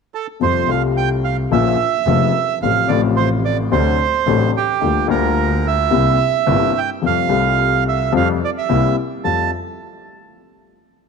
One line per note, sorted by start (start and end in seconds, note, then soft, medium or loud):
0.15 0.27 A4 medium
0.40 0.64 F2 soft
0.40 0.65 F2 soft
0.40 0.64 C3 soft
0.40 0.64 F3 soft
0.40 0.64 G3 soft
0.40 0.64 A3 soft
0.40 0.64 F4 soft
0.40 0.70 C5 medium
0.66 1.47 C2 medium
0.66 1.48 C2 medium
0.66 1.47 C3 medium
0.66 1.47 G3 soft
0.66 1.48 A3 soft
0.66 1.48 F4 medium
0.66 0.82 F5 medium
0.97 1.09 G5 medium
1.24 1.37 F5 medium
1.51 1.75 A#1 medium
1.51 1.75 A#2 medium
1.51 1.74 C#3 medium
1.51 1.75 F3 medium
1.51 1.75 A#3 medium
1.51 1.75 F4 medium
1.51 2.59 E5 medium
2.07 2.30 F1 medium
2.07 2.30 F2 medium
2.07 2.30 C#3 medium
2.07 2.30 F3 medium
2.07 2.31 A#3 medium
2.07 2.30 F4 medium
2.62 2.85 A1 soft
2.62 2.86 A1 soft
2.62 2.86 A2 soft
2.62 2.86 C3 soft
2.62 2.86 F3 soft
2.62 2.86 A3 soft
2.62 2.86 F4 soft
2.62 2.91 F5 medium
2.88 3.68 A1 medium
2.88 3.69 A2 medium
2.88 3.67 C3 medium
2.88 3.68 F3 soft
2.88 3.68 A3 medium
2.88 3.69 F4 medium
2.88 3.01 D5 medium
3.17 3.29 C5 medium
3.45 3.57 D5 medium
3.72 3.95 D2 medium
3.72 3.95 C3 medium
3.72 3.95 D3 medium
3.72 3.95 F#3 medium
3.72 3.95 A3 soft
3.72 3.96 D4 medium
3.72 4.51 C5 medium
4.26 4.50 A1 medium
4.26 4.50 A2 medium
4.26 4.50 C3 medium
4.26 4.50 F#3 medium
4.26 4.50 A3 medium
4.26 4.50 D4 medium
4.57 5.07 G4 medium
4.81 5.05 D2 soft
4.81 5.06 D2 medium
4.81 5.05 D3 soft
4.81 5.05 G3 soft
4.81 5.05 A#3 soft
4.81 5.05 F4 soft
5.06 5.88 D2 medium
5.06 5.89 D2 medium
5.06 5.88 D3 medium
5.06 5.88 G3 soft
5.06 5.88 A#3 soft
5.06 5.89 F4 medium
5.11 5.67 A#4 medium
5.67 6.80 E5 medium
5.90 6.15 C2 medium
5.90 6.16 C2 medium
5.90 6.15 C3 medium
5.90 6.15 G3 medium
5.90 6.15 A#3 medium
5.90 6.15 E4 medium
6.46 6.70 G1 medium
6.46 6.71 G1 medium
6.46 6.70 G2 medium
6.46 6.70 C3 medium
6.46 6.70 G3 medium
6.46 6.71 A#3 medium
6.46 6.71 E4 medium
6.78 6.90 G5 medium
7.02 7.26 F2 soft
7.02 7.27 F2 soft
7.02 7.26 C3 soft
7.02 7.26 F3 soft
7.02 7.26 G3 soft
7.02 7.26 A3 soft
7.02 7.26 F4 soft
7.07 7.84 F5 medium
7.29 8.09 C2 medium
7.29 8.10 C2 medium
7.29 8.09 C3 medium
7.29 8.09 G3 soft
7.29 8.09 A3 medium
7.29 8.10 F4 medium
7.89 8.13 E5 medium
8.12 8.37 F2 medium
8.12 8.38 F2 medium
8.12 8.36 C3 medium
8.12 8.36 F3 medium
8.12 8.37 G3 medium
8.12 8.37 A3 soft
8.12 8.37 F4 medium
8.17 8.28 F5 medium
8.45 8.50 D5 medium
8.58 8.96 E5 medium
8.69 8.93 C2 medium
8.69 8.93 C3 medium
8.69 8.93 G3 medium
8.69 8.93 A#3 medium
8.69 8.93 E4 medium
9.24 9.48 F2 soft
9.24 9.49 F2 soft
9.24 9.48 G3 soft
9.24 9.48 A3 soft
9.24 9.48 F4 medium
9.24 9.51 A5 medium